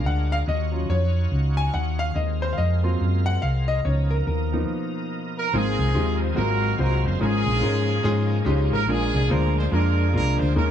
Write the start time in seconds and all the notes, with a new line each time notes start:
Already playing: G#3 D4 F4 A#4
0.05 D2 F#5
0.32 F5
0.46 D#2 D#4 F4 F#4 C#5 D#5
0.72 F#3 C#4 F4
0.89 F2 C#5
1.32 C#2
1.57 G#5
1.74 D#2 F#5
1.99 F5
2.14 D#2 G#3 C4 F4 A#4 D#5
2.42 C5
2.53 F5
2.58 F2 D#5
2.83 F#3 A#3 C4 F4
3.01 F#2
3.26 F#5
3.42 C2 F5
3.68 D#5
3.84 C#2 B2 E3 D#4 A#4 C#5
3.90 F3
4.10 A#4
4.27 D#2 A#4
4.53 F3 A#3 B3 D#4
5.37 A#4
5.53 G#1 G#2 F3 G#3 A#3 C4 D#4 F4 G#4 A#4
5.79 C2
5.94 D#2 G#3 C4 D#4 F4 G4
6.21 C5
6.35 G#1 G#2 F#3 G#3 A#3 C4 D#4 F4 F#4 G#4 A#4 F5
6.78 C2 G#3 C4 F4 F#4 A#4 C5
7.04 F#1 C5
7.20 G#1 G#2 F3 G#3 A#3 C#4 D#4 F4 G#4 A#4
7.46 A#1
7.61 G#2 G#3 C#4 D#4 F4 A#4
8.03 G#2 G#3 C#4 D#4 F4 G#4
8.45 C#2 G#3 C#4 D#4 F4 G4
8.71 G#1 A#4
8.87 A#1 A#2 F3 G#3 A#3 D4 F4 G#4 A#4
9.14 C2
9.29 D2 G#3 A#3 D4 F4 A#4 C5
9.57 C5
9.71 F2 G#3 A#3 D4 F4 A#4
10.13 C2 G#3 A#3 D4 F4 A#4
10.39 D2 C5
10.55 D#2 D#3 G#3 A#3 C#4 D#4 G#4 A#4